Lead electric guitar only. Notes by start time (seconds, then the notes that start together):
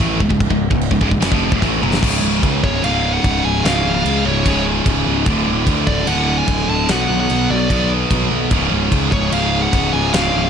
2.64 C#5
2.84 F5
3.13 F#5
3.45 G#5
3.65 F5
3.95 F5
4.25 C#5
5.87 D5
6.07 F#5
6.38 G#5
6.70 A5
6.90 F#5
7.20 F#5
7.51 D5
9.12 C#5
9.33 F5
9.62 F#5
9.93 G#5
10.13 F5
10.45 F5